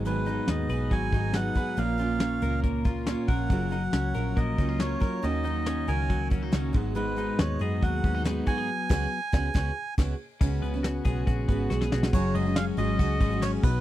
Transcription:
<<
  \new Staff \with { instrumentName = "Melodica" } { \time 4/4 \key fis \major \tempo 4 = 139 b'4 dis''4 gis''4 fis''4 | eis''2 r4. fis''8~ | fis''2 dis''4 cis''4 | dis''4. gis''4 r4. |
b'4 cis''8 dis''8 fis''4 r8 gis''8~ | gis''2. r4 | r1 | cis''8 dis''8 eis''8 dis''4. cis''8 b'8 | }
  \new Staff \with { instrumentName = "Clean electric guitar" } { \time 4/4 \key fis \major gis,8 dis'8 b8 b'8 fis8 dis'8 b8 b'8 | ais,8 eis'8 cis'8 ais'8 ais8 eis'8 cis'8 ais'8 | fis8 dis'16 r16 cis'8 ais'8 ais8 dis'16 eis'16 cis'8 ais'8 | dis8 dis'8 cis'8 ais'8 fis8 cis'16 dis'16 cis'8 gis,8 |
gis,8 dis'8 b8 gis'8 fis8 cis'16 dis'16 b8 fis'16 gis'16 | r1 | cis8 b8 fis'8 gis'8 fis'8 b8 fis'16 gis'16 fis'8 | fis8 gis8 cis'8 gis8 fis'8 gis8 cis'8 b,8 | }
  \new Staff \with { instrumentName = "Steel-string acoustic guitar" } { \time 4/4 \key fis \major <gis, dis fis b dis' gis'>8 <fis b dis' gis'>4 <fis b dis' gis'>4 <fis b dis' gis'>8 <fis b dis' gis'>8 <fis b dis' gis'>8 | <ais, eis ais cis' eis' ais'>8 <ais cis' eis' ais'>4 <ais cis' eis' ais'>4 <ais cis' eis' ais'>8 <ais cis' eis' ais'>8 <ais cis' eis' ais'>8 | <fis, cis fis cis' eis' ais'>8 <fis cis' ais'>4 <fis cis' eis' ais'>4 <fis cis' eis' ais'>8 <fis cis' eis' ais'>8 <fis cis' eis' ais'>8 | <dis fis ais cis' fis'>8 <fis ais cis' fis'>4 <fis ais cis' fis'>4 <fis ais cis' fis'>8 <fis ais cis' fis'>8 <gis b dis' fis'>8 |
<gis b dis' fis'>8 <gis b dis' fis'>4 <gis b dis' fis'>4 <gis b dis' fis'>8 <gis b dis' fis'>8 <gis b dis' fis'>8 | r8 <gis b cis' fis'>8 r8 <gis b cis' fis'>8 <gis b cis' fis'>8 r8 <gis b cis' fis'>8 r8 | <cis gis b cis' fis'>8. <b cis' fis'>8. <gis b cis' fis'>4 <gis b cis' fis'>8 <gis b cis' fis'>4 | <fis, cis fis cis' fis' gis'>8. <fis cis' fis' gis'>8. <fis cis' fis' gis'>8 <fis cis' fis' gis'>8. <fis cis' fis' gis'>8. <fis b dis' b'>8 | }
  \new Staff \with { instrumentName = "Picked electric bass" } { \clef bass \time 4/4 \key fis \major gis,,4 dis,8 b,,8 gis,,8 gis,,4 r8 | ais,,4. cis,4.~ cis,16 r16 ais,,8 | fis,,4 cis,8 ais,,8 ais,,8 cis,4 r8 | dis,4. cis,4. cis,8 gis,,8~ |
gis,,4 dis,8 fis,8 dis,8 dis,4 r8 | r8 cis,8 r8 cis,8 cis,8 r8 cis,8 r8 | cis,8 cis,4 b,,8 ais,,8 gis,,8 b,,8 b,,8 | fis,,8 fis,,4 gis,,8 cis,8 gis,,4 b,,8 | }
  \new DrumStaff \with { instrumentName = "Drums" } \drummode { \time 4/4 hh8 hh8 <hh sn>8 hh8 <hh bd>8 <hh bd>8 <hh sn>8 <hh bd>8 | hh8 hh8 <hh sn>8 hh8 <hh bd>8 <hh bd>8 <hh sn>8 <hho bd>8 | <hh bd>8 hh8 <hh sn>8 hh8 <hh bd>8 <hh bd>8 <hh sn>8 <hh bd>8 | hh8 hh8 <hh sn>8 hh8 <hh bd>8 <hh bd>8 <hh sn>8 <hh bd>8 |
hh8 hh8 <hh sn>8 hh8 <hh bd>8 <hh bd>8 <hh sn>8 <hh bd>8 | r8 <cymc bd sn>8 r8 <bd sn>8 <bd sn>4 <cymc bd sn>4 | <cymc bd>8 hh8 <hh sn>8 <hh bd>8 <hh bd>8 <hh bd>8 sn16 sn16 sn16 sn16 | <cymc bd>8 cymr8 <cymr sn>8 cymr8 <bd cymr>8 <bd cymr>8 <cymr sn>8 <cymc bd>8 | }
>>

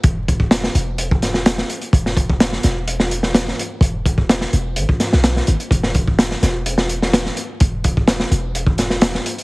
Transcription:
<<
  \new Staff \with { instrumentName = "808-style bass" } { \clef bass \time 4/4 \key b \phrygian \tempo 4 = 127 e,,4~ e,,16 r16 e,,4.~ e,,16 r8. | e,,4~ e,,16 r16 e,,4.~ e,,16 r8. | e,,4~ e,,16 r16 e,,8 gis,,16 r8 b,,8 r16 gis,,16 r16 | e,,4~ e,,16 r16 e,,4.~ e,,16 r8. |
e,,4~ e,,16 r16 e,,4.~ e,,16 r8. | }
  \new DrumStaff \with { instrumentName = "Drums" } \drummode { \time 4/4 <hh bd>8 <hh bd>16 bd16 <hh sn>16 sn16 hh8 hh16 bd16 <hh sn>16 sn16 <hh sn>16 sn16 hh16 hh16 | <hh bd>16 sn16 <hh bd>16 bd16 <hh sn>16 sn16 <hh sn>8 hh16 sn16 hh16 sn16 <hh sn>16 sn16 hh8 | <hh bd>8 <hh bd>16 bd16 <hh sn>16 sn16 hh8 hh16 bd16 <hh sn>16 sn16 <hh sn>16 sn16 hh16 hh16 | <hh bd>16 sn16 <hh bd>16 bd16 <hh sn>16 sn16 <hh sn>8 hh16 sn16 hh16 sn16 <hh sn>16 sn16 hh8 |
<hh bd>8 <hh bd>16 bd16 <hh sn>16 sn16 hh8 hh16 bd16 <hh sn>16 sn16 <hh sn>16 sn16 hh16 hh16 | }
>>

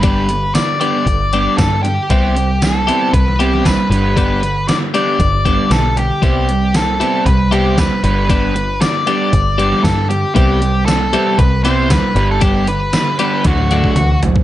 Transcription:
<<
  \new Staff \with { instrumentName = "Lead electric guitar" } { \time 4/4 \key g \major \tempo 4 = 116 b'4 d''8 d''4. a'8 g'8 | g'4 a'4 b'8 g'8 b'8 b'8 | b'4 d''8 d''4. a'8 g'8 | g'4 a'4 b'8 g'8 b'8 b'8 |
b'4 d''8 d''4. a'8 g'8 | g'4 a'4 b'8 c''8 b'8. a'16 | g'8 b'4 b'8 fis'4. r8 | }
  \new Staff \with { instrumentName = "Clean electric guitar" } { \time 4/4 \key g \major <g b d' g'>8 r4 <g b d' g'>8 r8 <g b d' g'>8 r4 | <g b e' g'>8 r4 <g b e' g'>8 r8 <g b e' g'>8 r4 | <g b d' g'>8 r4 <g b d' g'>8 r8 <g b d' g'>8 r4 | <g b e' g'>8 r4 <g b e' g'>8 r8 <g b e' g'>8 r4 |
<g b d' g'>8 r4 <g b d' g'>8 r8 <g b d' g'>8 r4 | <g b e' g'>8 r4 <g b e' g'>8 r8 <g b e' g'>8 r4 | <g b d' g'>8 r4 <g b d' g'>8 r8 <d a d' fis'>8 r4 | }
  \new Staff \with { instrumentName = "Overdriven electric guitar" } { \clef bass \time 4/4 \key g \major <g, d g>8 <g, d>8 <g, d>8 <g, d g>8 <g, d>8 <g, d g>8 <g, d>8 <g, d>8 | <c g c'>8 <c g>8 <c g>8 <c g c'>8 <c g>8 <c g c'>8 <c g>8 <g, d g>8 | <g, d g>8 <g, d>8 <g, d>8 <g, d g>8 <g, d>8 <g, d g>8 <g, d>8 <g, d>8 | <c g c'>8 <c g>8 <c g>8 <c g c'>8 <c g>8 <c g c'>8 <c g>8 <g, d g>8 |
<g, d g>8 <g, d>8 <g, d>8 <g, d g>8 <g, d>8 <g, d g>8 <g, d>8 <g, d>8 | <c g c'>8 <c g>8 <c g>8 <c g c'>8 <c g>8 <c g c'>8 <c g>8 <g, d g>8 | <g, d g>8 <g, d>8 <g, d>8 <g, d g>8 <d fis a>8 <d fis a>8 <d fis>8 <d fis>8 | }
  \new Staff \with { instrumentName = "Picked electric bass" } { \clef bass \time 4/4 \key g \major g,,4. r8 g,,4 g,4 | c,2 c,4 aes,,16 r16 g,,8~ | g,,4. r8 g,,4 b,,4 | c,2 c,4 d,16 r16 g,,8~ |
g,,4. r8 g,,4 g,4 | c,2 c,4 d,16 r16 g,,8~ | g,,4. r8 d,4 d,4 | }
  \new DrumStaff \with { instrumentName = "Drums" } \drummode { \time 4/4 <hh bd>8 hh8 <hh sn tamb>8 hh8 <hh bd>8 hh8 <hh bd sn tamb>8 hh8 | <hh bd>8 hh8 <hh sn tamb>8 hh8 <hh bd>16 sn16 hh16 sn16 <hh bd sn tamb>8 hh8 | <hh bd>8 hh8 <hh sn tamb>8 hh8 <hh bd>8 <hh bd>8 <hh sn tamb>8 hh8 | <hh bd>8 hh8 <hh sn tamb>8 hh8 <hh bd>8 hh8 <hh bd sn tamb>8 hh8 |
<hh bd>8 hh8 <hh sn tamb>8 hh8 <hh bd>8 hh16 sn16 <hh bd sn tamb>8 hh8 | <hh bd>8 hh8 <hh sn tamb>8 hh8 <hh bd>8 hh8 <hh bd sn tamb>8 hh8 | <hh bd>8 hh8 <hh sn tamb>8 hh8 <hh bd sn>16 tommh16 hh16 bd16 <hh toml>8 <hh tomfh>16 bd16 | }
>>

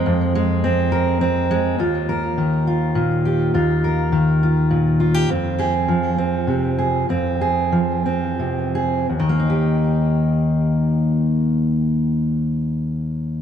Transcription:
\new Staff \with { instrumentName = "Steel-string acoustic guitar" } { \time 6/8 \key ees \major \tempo 4. = 67 << { <aes c'>8 aes8 c'8 bes'8 c'8 aes8 | f'8 bes'4 f'4 g'8 | f'8 bes'4 f'4 f'16 g'16 | c'8 aes'4 c'4 aes'8 |
c'8 aes'4 c'4 aes'8 | <ees bes ees' g'>2.~ | <ees bes ees' g'>2. | } \\ { f,2. | ees,4 ees4 bes,4 | ees,4 ees4 bes,4 | f,4 f4 c4 |
f,4 f4 c4 | ees,2.~ | ees,2. | } >> }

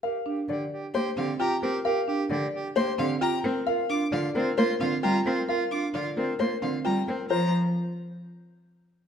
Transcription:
<<
  \new Staff \with { instrumentName = "Violin" } { \time 4/4 \key bes \major \tempo 4 = 132 r2 c'''8 f''8 bes''8 r8 | r2 c'''8 f''8 bes''8 r8 | r8 d'''8 f''8 r8 c'''8 f''8 bes''8 r8 | r8 d'''8 f''8 r8 c'''8 f''8 bes''8 r8 |
bes''8 r2. r8 | }
  \new Staff \with { instrumentName = "Grand piano" } { \time 4/4 \key bes \major f''8 r8 d''8 r8 c''8 r8 g''8 bes'8 | f''8 r8 d''8 r8 c''8 r8 g''8 bes'8 | f''8 r8 d''8 bes'8 c''8 r8 g''8 bes'8 | f''8 r8 d''8 bes'8 c''8 r8 g''8 bes'8 |
c''8 r2. r8 | }
  \new Staff \with { instrumentName = "Soprano saxophone" } { \time 4/4 \key bes \major g'8 g'8 g'8 g'8 g'8 g'8 g'8 g'8 | g'8 g'8 g'8 g'8 g'8 g'8 g'8 r8 | f'8 f'8 f'8 f'8 f'8 f'8 f'8 f'8 | f'8 f'8 f'8 f'8 f'8 f'8 f'8 r8 |
r1 | }
  \new Staff \with { instrumentName = "Marimba" } { \time 4/4 \key bes \major bes'8 d'8 r4. c'8 f'8 r8 | bes'8 d'8 r4. c'8 f'8 r8 | bes'8 d'8 f'8 r8 bes'8 c'8 f'8 r8 | bes'8 d'8 f'8 r8 bes'8 c'8 f'8 r8 |
f'8 r2. r8 | }
  \new Staff \with { instrumentName = "Cello" } { \clef bass \time 4/4 \key bes \major r4 d8 r8 bes8 d8 r8 c'8 | r4 d8 r8 bes8 d8 r8 c'8 | r4 d8 c'8 bes8 d8 g8 c'8 | r4 d8 c'8 bes8 d8 g8 c'8 |
f8 r2. r8 | }
>>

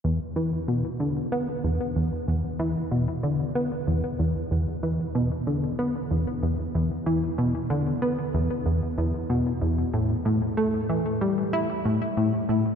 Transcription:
\new Staff \with { instrumentName = "Analog synth bass" } { \clef bass \time 4/4 \key e \minor \tempo 4 = 94 e,16 r16 e8 b,16 r16 d8 b16 r16 e,16 r16 e,16 r16 e,16 r16 | e8 b,16 r16 d8 b16 r16 e,16 r16 e,16 r16 e,16 r16 e8 | b,16 r16 d8 b16 r16 e,16 r16 e,16 r16 e,16 r16 e8 b,16 r16 | d8 b16 r16 e,16 r16 e,16 r16 e,16 r16 b,8 e,8 a,8 |
a,16 r16 a8 e16 r16 g8 e'16 r16 a,16 r16 a,16 r16 a,16 r16 | }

